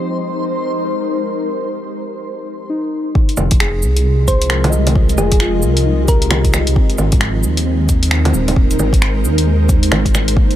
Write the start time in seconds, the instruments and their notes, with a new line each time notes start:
Already playing: ambient pad G#3 C4 D#4 G4 A#4 C5 D#5, synth texture C5
2.69 synth keys D#4
3.15 ambient pad F3, kick
3.28 ambient pad F4, closed hi-hat
3.37 detuned saw bass F1, low bongo, cabasa
3.47 ambient pad G#3
3.51 detuned saw bass F1, kick, closed hi-hat
3.60 synth keys G#4, finger snap
3.83 detuned saw bass C2, ambient pad D#5, cabasa
3.97 closed hi-hat
4.28 synth pluck C5, kick, closed hi-hat, cabasa
4.42 closed hi-hat
4.50 synth keys A#4, finger snap
4.64 closed hi-hat, low bongo
4.70 detuned saw bass C2, synth keys D#5, cabasa
4.87 closed hi-hat, low bongo
4.95 kick
5.09 closed hi-hat, cabasa
5.18 detuned saw bass F1, synth pluck G#4, low bongo, cabasa
5.32 detuned saw bass F1, kick, closed hi-hat
5.40 synth keys F4, finger snap
5.59 synth keys G#4, cabasa
5.63 detuned saw bass C2
5.73 synth keys A#4, closed hi-hat
5.86 synth keys D#4
6.04 detuned saw bass C2, synth keys G4, kick, closed hi-hat, cabasa
6.09 synth pluck A#4
6.22 closed hi-hat
6.31 finger snap, low bongo
6.45 kick, closed hi-hat
6.54 finger snap, low bongo, cabasa
6.67 detuned saw bass C2, closed hi-hat
6.75 ambient pad G#3, synth keys C4, kick
6.84 ambient pad D#4
6.90 ambient pad C5, closed hi-hat
6.98 detuned saw bass G#1, low bongo, cabasa
7.12 detuned saw bass G#1, kick, closed hi-hat
7.16 ambient pad A#4
7.21 finger snap
7.43 detuned saw bass D#2, cabasa
7.57 closed hi-hat
7.66 synth keys C4
7.89 kick, closed hi-hat, cabasa
8.03 closed hi-hat
8.11 finger snap
8.25 closed hi-hat, low bongo
8.34 detuned saw bass D#1, cabasa
8.48 closed hi-hat, low bongo
8.56 kick
8.71 closed hi-hat, cabasa
8.79 detuned saw bass G#1, low bongo, cabasa
8.93 detuned saw bass G#1, kick, closed hi-hat
9.02 finger snap
9.24 detuned saw bass D#2, cabasa
9.38 closed hi-hat
9.46 synth keys G#3
9.69 kick, closed hi-hat, cabasa
9.83 closed hi-hat
9.91 detuned saw bass G#1, finger snap, low bongo
10.05 kick, closed hi-hat
10.15 finger snap, low bongo, cabasa
10.28 closed hi-hat
10.36 ambient pad C#3, synth keys A#3, kick
10.51 closed hi-hat